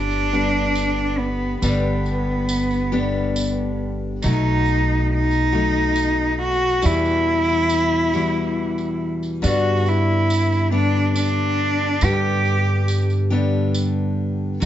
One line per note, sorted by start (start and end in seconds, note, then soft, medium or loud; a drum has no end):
0.00 1.59 G1 medium
0.00 0.31 G2 medium
0.00 0.32 D3 medium
0.00 0.32 G3 medium
0.00 0.32 B3 medium
0.00 0.32 D4 medium
0.00 1.20 D4 loud
0.00 0.32 G4 medium
0.11 tambourine soft
0.33 1.61 G2 medium
0.33 1.62 D3 medium
0.33 1.62 G3 medium
0.33 1.63 B3 medium
0.33 1.63 D4 medium
0.33 1.63 G4 medium
0.76 tambourine medium
1.19 1.62 B3 medium
1.62 4.19 G1 medium
1.62 2.93 G2 medium
1.62 2.92 D3 medium
1.62 2.92 G3 medium
1.62 2.93 B3 medium
1.62 3.77 B3 medium
1.62 2.91 D4 medium
1.62 2.91 G4 medium
1.62 tambourine medium
2.06 tambourine soft
2.49 tambourine medium
2.71 tambourine soft
2.92 4.24 G2 medium
2.92 4.22 D3 medium
2.92 4.24 G3 medium
2.92 4.23 B3 medium
2.92 4.23 D4 medium
2.92 4.23 G4 medium
3.36 tambourine medium
4.22 6.80 B1 medium
4.22 5.53 B2 medium
4.22 5.54 F#3 medium
4.22 5.52 A3 medium
4.22 5.52 D#4 medium
4.22 5.07 D#4 loud
4.22 5.52 F#4 medium
4.22 tambourine medium
4.66 tambourine soft
5.14 6.38 D#4 loud
5.31 tambourine soft
5.52 6.80 B2 medium
5.52 6.82 F#3 medium
5.52 6.82 A3 medium
5.52 6.82 D#4 medium
5.52 6.82 F#4 medium
5.96 tambourine medium
6.43 6.87 F#4 loud
6.81 8.12 E2 medium
6.81 9.40 E2 medium
6.81 8.13 B2 medium
6.81 8.13 E3 medium
6.81 8.14 G3 medium
6.81 8.13 E4 medium
6.81 8.12 F#4 medium
6.81 tambourine medium
6.86 9.01 E4 loud
7.06 tambourine soft
7.49 tambourine soft
7.69 tambourine medium
8.13 9.42 E2 medium
8.13 9.42 B2 medium
8.13 9.42 E3 medium
8.13 9.43 G3 medium
8.13 9.43 E4 medium
8.13 9.43 F#4 medium
8.13 tambourine soft
8.78 tambourine soft
9.23 tambourine soft
9.42 10.72 G2 medium
9.42 11.99 G2 medium
9.42 10.72 D3 medium
9.42 10.71 G3 medium
9.42 10.72 B3 medium
9.42 10.71 D4 medium
9.42 9.90 F#4 medium
9.42 tambourine medium
9.86 10.74 E4 medium
9.86 tambourine soft
10.30 tambourine medium
10.52 tambourine soft
10.71 12.01 G2 medium
10.71 12.01 D3 medium
10.71 12.02 G3 medium
10.71 12.03 B3 medium
10.71 12.02 D4 medium
10.71 11.14 D4 medium
10.71 12.02 G4 medium
11.16 12.06 D4 loud
11.16 tambourine medium
12.01 13.32 G2 medium
12.01 14.57 G2 medium
12.01 13.31 D3 medium
12.01 13.31 G3 medium
12.01 13.32 B3 medium
12.01 13.30 D4 medium
12.01 13.29 G4 medium
12.01 13.01 G4 loud
12.01 tambourine medium
12.45 tambourine soft
12.88 tambourine medium
13.10 tambourine soft
13.30 14.62 G2 medium
13.30 14.60 D3 medium
13.30 14.61 G3 medium
13.30 14.62 B3 medium
13.30 14.61 D4 medium
13.30 14.61 G4 medium
13.74 tambourine medium
14.60 14.65 B1 medium
14.60 14.65 B2 medium
14.60 14.65 F#3 medium
14.60 14.65 A3 medium
14.60 tambourine medium